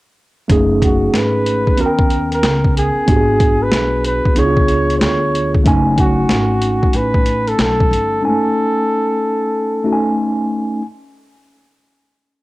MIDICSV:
0, 0, Header, 1, 6, 480
1, 0, Start_track
1, 0, Tempo, 645161
1, 368, Time_signature, 4, 2, 24, 8
1, 9247, End_track
2, 0, Start_track
2, 0, Title_t, "Flugelhorn"
2, 0, Program_c, 0, 56
2, 625, Note_on_c, 0, 66, 77
2, 868, Note_on_c, 0, 71, 90
2, 880, Note_off_c, 0, 66, 0
2, 1344, Note_on_c, 0, 70, 87
2, 1355, Note_off_c, 0, 71, 0
2, 1726, Note_off_c, 0, 70, 0
2, 1737, Note_on_c, 0, 70, 81
2, 2036, Note_off_c, 0, 70, 0
2, 2064, Note_on_c, 0, 68, 92
2, 2698, Note_on_c, 0, 71, 90
2, 2709, Note_off_c, 0, 68, 0
2, 3015, Note_off_c, 0, 71, 0
2, 3020, Note_on_c, 0, 71, 93
2, 3265, Note_on_c, 0, 73, 93
2, 3277, Note_off_c, 0, 71, 0
2, 3698, Note_off_c, 0, 73, 0
2, 3702, Note_on_c, 0, 72, 64
2, 3743, Note_on_c, 0, 73, 86
2, 3754, Note_off_c, 0, 72, 0
2, 4125, Note_off_c, 0, 73, 0
2, 4461, Note_on_c, 0, 66, 97
2, 5180, Note_on_c, 0, 71, 93
2, 5191, Note_off_c, 0, 66, 0
2, 5567, Note_on_c, 0, 69, 88
2, 5578, Note_off_c, 0, 71, 0
2, 5653, Note_off_c, 0, 69, 0
2, 5661, Note_on_c, 0, 69, 99
2, 6105, Note_off_c, 0, 69, 0
2, 6138, Note_on_c, 0, 69, 96
2, 7543, Note_off_c, 0, 69, 0
2, 9247, End_track
3, 0, Start_track
3, 0, Title_t, "Tine electric piano"
3, 0, Program_c, 1, 4
3, 358, Note_on_c, 1, 57, 68
3, 367, Note_on_c, 1, 61, 67
3, 376, Note_on_c, 1, 63, 58
3, 385, Note_on_c, 1, 68, 83
3, 1304, Note_off_c, 1, 57, 0
3, 1309, Note_off_c, 1, 61, 0
3, 1313, Note_off_c, 1, 63, 0
3, 1316, Note_on_c, 1, 59, 64
3, 1318, Note_off_c, 1, 68, 0
3, 1326, Note_on_c, 1, 61, 52
3, 1334, Note_on_c, 1, 66, 47
3, 1345, Note_on_c, 1, 70, 66
3, 1383, Note_on_c, 1, 79, 64
3, 1392, Note_off_c, 1, 66, 0
3, 2263, Note_off_c, 1, 59, 0
3, 2268, Note_off_c, 1, 61, 0
3, 2278, Note_off_c, 1, 70, 0
3, 2278, Note_on_c, 1, 59, 64
3, 2288, Note_on_c, 1, 62, 60
3, 2297, Note_off_c, 1, 79, 0
3, 2297, Note_on_c, 1, 66, 55
3, 2307, Note_on_c, 1, 67, 58
3, 2356, Note_on_c, 1, 68, 70
3, 2358, Note_off_c, 1, 67, 0
3, 3224, Note_off_c, 1, 59, 0
3, 3229, Note_off_c, 1, 62, 0
3, 3234, Note_off_c, 1, 66, 0
3, 3235, Note_on_c, 1, 59, 66
3, 3245, Note_on_c, 1, 62, 57
3, 3254, Note_off_c, 1, 68, 0
3, 3254, Note_on_c, 1, 64, 49
3, 3263, Note_on_c, 1, 68, 71
3, 3303, Note_on_c, 1, 65, 63
3, 3312, Note_off_c, 1, 64, 0
3, 4182, Note_off_c, 1, 59, 0
3, 4188, Note_off_c, 1, 62, 0
3, 4195, Note_on_c, 1, 57, 74
3, 4197, Note_off_c, 1, 68, 0
3, 4204, Note_on_c, 1, 61, 67
3, 4214, Note_on_c, 1, 63, 68
3, 4217, Note_off_c, 1, 65, 0
3, 4223, Note_on_c, 1, 80, 84
3, 6092, Note_off_c, 1, 57, 0
3, 6097, Note_off_c, 1, 61, 0
3, 6101, Note_off_c, 1, 63, 0
3, 6106, Note_off_c, 1, 80, 0
3, 6111, Note_on_c, 1, 56, 48
3, 6118, Note_on_c, 1, 61, 61
3, 6129, Note_on_c, 1, 63, 51
3, 6137, Note_on_c, 1, 80, 66
3, 6159, Note_on_c, 1, 57, 61
3, 6180, Note_off_c, 1, 56, 0
3, 7299, Note_off_c, 1, 61, 0
3, 7305, Note_off_c, 1, 63, 0
3, 7309, Note_off_c, 1, 80, 0
3, 7313, Note_off_c, 1, 57, 0
3, 7322, Note_on_c, 1, 57, 62
3, 7327, Note_on_c, 1, 61, 52
3, 7332, Note_on_c, 1, 63, 56
3, 7337, Note_on_c, 1, 66, 52
3, 7385, Note_on_c, 1, 80, 65
3, 7393, Note_off_c, 1, 66, 0
3, 8045, Note_off_c, 1, 57, 0
3, 8048, Note_off_c, 1, 61, 0
3, 8050, Note_off_c, 1, 63, 0
3, 8077, Note_off_c, 1, 80, 0
3, 9247, End_track
4, 0, Start_track
4, 0, Title_t, "Upright bass"
4, 0, Program_c, 2, 32
4, 369, Note_on_c, 2, 30, 104
4, 825, Note_off_c, 2, 30, 0
4, 849, Note_on_c, 2, 32, 81
4, 1219, Note_off_c, 2, 32, 0
4, 1330, Note_on_c, 2, 39, 92
4, 1786, Note_off_c, 2, 39, 0
4, 1808, Note_on_c, 2, 37, 85
4, 2178, Note_off_c, 2, 37, 0
4, 2289, Note_on_c, 2, 32, 88
4, 2745, Note_off_c, 2, 32, 0
4, 2766, Note_on_c, 2, 35, 78
4, 3137, Note_off_c, 2, 35, 0
4, 3247, Note_on_c, 2, 37, 88
4, 3704, Note_off_c, 2, 37, 0
4, 3730, Note_on_c, 2, 38, 95
4, 4186, Note_off_c, 2, 38, 0
4, 4209, Note_on_c, 2, 30, 102
4, 4665, Note_off_c, 2, 30, 0
4, 4688, Note_on_c, 2, 32, 78
4, 5058, Note_off_c, 2, 32, 0
4, 5164, Note_on_c, 2, 33, 82
4, 5622, Note_off_c, 2, 33, 0
4, 5645, Note_on_c, 2, 35, 91
4, 5874, Note_off_c, 2, 35, 0
4, 5883, Note_on_c, 2, 31, 83
4, 6114, Note_off_c, 2, 31, 0
4, 9247, End_track
5, 0, Start_track
5, 0, Title_t, "Muted upright bass strokes"
5, 1242, Note_on_c, 9, 29, 43
5, 1316, Note_off_c, 9, 29, 0
5, 2199, Note_on_c, 9, 29, 38
5, 2273, Note_off_c, 9, 29, 0
5, 3164, Note_on_c, 9, 29, 48
5, 3238, Note_off_c, 9, 29, 0
5, 5081, Note_on_c, 9, 29, 47
5, 5155, Note_off_c, 9, 29, 0
5, 9247, End_track
6, 0, Start_track
6, 0, Title_t, "Drums"
6, 369, Note_on_c, 9, 42, 94
6, 370, Note_on_c, 9, 36, 93
6, 444, Note_off_c, 9, 36, 0
6, 444, Note_off_c, 9, 42, 0
6, 610, Note_on_c, 9, 36, 79
6, 613, Note_on_c, 9, 42, 71
6, 684, Note_off_c, 9, 36, 0
6, 687, Note_off_c, 9, 42, 0
6, 846, Note_on_c, 9, 38, 90
6, 856, Note_on_c, 9, 42, 90
6, 920, Note_off_c, 9, 38, 0
6, 931, Note_off_c, 9, 42, 0
6, 1088, Note_on_c, 9, 42, 68
6, 1163, Note_off_c, 9, 42, 0
6, 1243, Note_on_c, 9, 36, 67
6, 1318, Note_off_c, 9, 36, 0
6, 1320, Note_on_c, 9, 42, 72
6, 1394, Note_off_c, 9, 42, 0
6, 1478, Note_on_c, 9, 36, 89
6, 1552, Note_off_c, 9, 36, 0
6, 1565, Note_on_c, 9, 42, 56
6, 1639, Note_off_c, 9, 42, 0
6, 1725, Note_on_c, 9, 42, 48
6, 1800, Note_off_c, 9, 42, 0
6, 1809, Note_on_c, 9, 38, 104
6, 1809, Note_on_c, 9, 42, 82
6, 1883, Note_off_c, 9, 38, 0
6, 1884, Note_off_c, 9, 42, 0
6, 1968, Note_on_c, 9, 36, 77
6, 2042, Note_off_c, 9, 36, 0
6, 2063, Note_on_c, 9, 42, 75
6, 2137, Note_off_c, 9, 42, 0
6, 2290, Note_on_c, 9, 36, 96
6, 2290, Note_on_c, 9, 42, 95
6, 2364, Note_off_c, 9, 36, 0
6, 2364, Note_off_c, 9, 42, 0
6, 2529, Note_on_c, 9, 36, 88
6, 2529, Note_on_c, 9, 42, 70
6, 2604, Note_off_c, 9, 36, 0
6, 2604, Note_off_c, 9, 42, 0
6, 2764, Note_on_c, 9, 38, 101
6, 2775, Note_on_c, 9, 42, 91
6, 2839, Note_off_c, 9, 38, 0
6, 2850, Note_off_c, 9, 42, 0
6, 3009, Note_on_c, 9, 42, 70
6, 3083, Note_off_c, 9, 42, 0
6, 3164, Note_on_c, 9, 36, 80
6, 3239, Note_off_c, 9, 36, 0
6, 3242, Note_on_c, 9, 42, 76
6, 3316, Note_off_c, 9, 42, 0
6, 3397, Note_on_c, 9, 36, 83
6, 3472, Note_off_c, 9, 36, 0
6, 3484, Note_on_c, 9, 42, 64
6, 3558, Note_off_c, 9, 42, 0
6, 3645, Note_on_c, 9, 42, 46
6, 3719, Note_off_c, 9, 42, 0
6, 3728, Note_on_c, 9, 38, 105
6, 3728, Note_on_c, 9, 42, 76
6, 3803, Note_off_c, 9, 38, 0
6, 3803, Note_off_c, 9, 42, 0
6, 3980, Note_on_c, 9, 42, 66
6, 4054, Note_off_c, 9, 42, 0
6, 4125, Note_on_c, 9, 36, 75
6, 4200, Note_off_c, 9, 36, 0
6, 4208, Note_on_c, 9, 42, 90
6, 4209, Note_on_c, 9, 36, 97
6, 4283, Note_off_c, 9, 36, 0
6, 4283, Note_off_c, 9, 42, 0
6, 4448, Note_on_c, 9, 36, 85
6, 4449, Note_on_c, 9, 42, 67
6, 4522, Note_off_c, 9, 36, 0
6, 4523, Note_off_c, 9, 42, 0
6, 4681, Note_on_c, 9, 38, 99
6, 4692, Note_on_c, 9, 42, 92
6, 4756, Note_off_c, 9, 38, 0
6, 4766, Note_off_c, 9, 42, 0
6, 4923, Note_on_c, 9, 42, 76
6, 4997, Note_off_c, 9, 42, 0
6, 5081, Note_on_c, 9, 36, 75
6, 5156, Note_off_c, 9, 36, 0
6, 5158, Note_on_c, 9, 42, 80
6, 5233, Note_off_c, 9, 42, 0
6, 5315, Note_on_c, 9, 36, 76
6, 5389, Note_off_c, 9, 36, 0
6, 5400, Note_on_c, 9, 42, 62
6, 5474, Note_off_c, 9, 42, 0
6, 5562, Note_on_c, 9, 42, 41
6, 5636, Note_off_c, 9, 42, 0
6, 5646, Note_on_c, 9, 38, 103
6, 5646, Note_on_c, 9, 42, 70
6, 5720, Note_off_c, 9, 38, 0
6, 5720, Note_off_c, 9, 42, 0
6, 5806, Note_on_c, 9, 36, 82
6, 5880, Note_off_c, 9, 36, 0
6, 5900, Note_on_c, 9, 42, 73
6, 5974, Note_off_c, 9, 42, 0
6, 9247, End_track
0, 0, End_of_file